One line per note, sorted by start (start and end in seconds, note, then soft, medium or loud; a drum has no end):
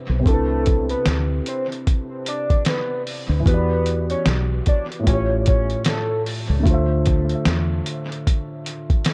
0.00 0.18 C3 medium
0.00 0.20 C4 medium
0.00 0.22 D4 medium
0.00 0.24 E4 medium
0.00 0.26 B4 medium
0.09 0.24 B1 medium
0.20 3.39 C3 medium
0.20 3.40 C4 medium
0.26 0.94 C2 loud
0.26 3.42 D4 medium
0.26 0.92 A4 loud
0.26 kick loud
0.26 closed hi-hat medium
0.30 3.44 E4 medium
0.30 3.46 B4 medium
0.66 kick medium
0.66 closed hi-hat medium
0.89 1.05 B4 medium
0.89 closed hi-hat soft
1.06 1.40 D2 medium
1.06 snare loud
1.06 closed hi-hat medium
1.46 1.67 C5 medium
1.46 closed hi-hat medium
1.72 closed hi-hat soft
1.87 kick medium
1.87 closed hi-hat medium
2.26 2.63 D5 medium
2.26 closed hi-hat medium
2.50 kick medium
2.50 closed hi-hat soft
2.65 3.03 B4 medium
2.65 snare loud
2.65 closed hi-hat medium
3.07 open hi-hat soft
3.29 3.44 D2 loud
3.40 4.99 E3 medium
3.40 5.01 B3 medium
3.46 4.14 E2 loud
3.46 5.03 F#4 medium
3.46 4.06 B4 loud
3.46 kick loud
3.46 closed hi-hat medium
3.50 5.05 G4 medium
3.50 5.07 D5 medium
3.86 closed hi-hat medium
4.10 4.25 C#5 medium
4.10 closed hi-hat soft
4.26 4.60 B1 medium
4.26 snare loud
4.26 closed hi-hat medium
4.66 4.87 D5 medium
4.66 kick medium
4.66 closed hi-hat medium
4.92 closed hi-hat soft
4.99 6.59 A2 medium
4.99 6.61 A3 medium
5.07 5.74 A1 loud
5.07 6.63 F4 medium
5.07 6.65 G4 medium
5.07 5.43 C#5 loud
5.07 kick medium
5.07 closed hi-hat medium
5.14 6.67 C#5 medium
5.46 5.83 C#5 medium
5.46 kick loud
5.46 closed hi-hat medium
5.70 closed hi-hat soft
5.85 6.23 A4 medium
5.85 snare loud
5.85 closed hi-hat medium
6.26 open hi-hat medium
6.50 6.64 C#2 medium
6.60 9.13 D3 medium
6.60 9.13 A3 medium
6.66 7.34 D2 loud
6.66 9.13 F4 medium
6.66 kick loud
6.66 closed hi-hat medium
6.70 9.13 C5 medium
6.70 9.13 E5 medium
7.06 kick medium
7.06 closed hi-hat medium
7.29 closed hi-hat soft
7.45 7.80 E2 medium
7.45 snare loud
7.45 closed hi-hat medium
7.86 closed hi-hat medium
8.12 closed hi-hat soft
8.27 kick medium
8.27 closed hi-hat medium
8.66 closed hi-hat medium
8.90 kick medium
8.90 closed hi-hat soft
9.05 snare loud
9.05 closed hi-hat medium